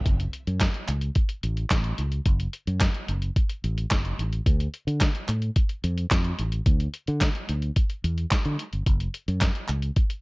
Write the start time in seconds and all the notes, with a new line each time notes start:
0.06 F#1, kick, closed hi-hat
0.20 closed hi-hat
0.33 closed hi-hat
0.47 F#2, closed hi-hat
0.61 kick, snare, clap, closed hi-hat
0.74 closed hi-hat
0.88 C#2, clap, closed hi-hat
1.01 closed hi-hat
1.15 kick, closed hi-hat
1.29 closed hi-hat
1.43 A1, closed hi-hat
1.57 closed hi-hat
1.70 A1, kick, snare, clap, closed hi-hat
1.84 closed hi-hat
1.98 C#2, closed hi-hat
2.12 closed hi-hat
2.26 F#1, kick, closed hi-hat
2.40 closed hi-hat
2.53 closed hi-hat
2.67 F#2, closed hi-hat
2.81 kick, snare, clap, closed hi-hat
2.94 closed hi-hat
3.08 F#1, closed hi-hat
3.22 closed hi-hat
3.36 kick, closed hi-hat
3.49 closed hi-hat
3.64 A1, closed hi-hat
3.78 closed hi-hat
3.91 F#1, kick, snare, clap, closed hi-hat
4.05 closed hi-hat
4.19 A1, closed hi-hat
4.33 closed hi-hat
4.46 D2, kick, closed hi-hat
4.60 closed hi-hat
4.74 closed hi-hat
4.87 D3, closed hi-hat
5.01 kick, snare, clap, closed hi-hat
5.15 closed hi-hat
5.28 A2, clap, closed hi-hat
5.42 closed hi-hat
5.56 kick, closed hi-hat
5.69 closed hi-hat
5.84 F2, closed hi-hat
5.98 closed hi-hat
6.11 F2, kick, snare, clap, closed hi-hat
6.24 closed hi-hat
6.39 A1, closed hi-hat
6.52 closed hi-hat
6.66 D2, kick, closed hi-hat
6.80 closed hi-hat
6.94 closed hi-hat
7.07 D3, closed hi-hat
7.21 kick, snare, clap, closed hi-hat
7.35 closed hi-hat
7.49 D2, closed hi-hat
7.62 closed hi-hat
7.76 kick, closed hi-hat
7.90 closed hi-hat
8.04 E2, closed hi-hat
8.18 closed hi-hat
8.31 kick, snare, clap, closed hi-hat
8.45 D3, closed hi-hat
8.59 closed hi-hat
8.73 G1, closed hi-hat
8.86 F#1, kick, closed hi-hat
9.00 closed hi-hat
9.14 closed hi-hat
9.28 F#2, closed hi-hat
9.41 kick, snare, clap, closed hi-hat
9.55 closed hi-hat
9.68 C#2, clap, closed hi-hat
9.82 closed hi-hat
9.96 kick, closed hi-hat
10.10 closed hi-hat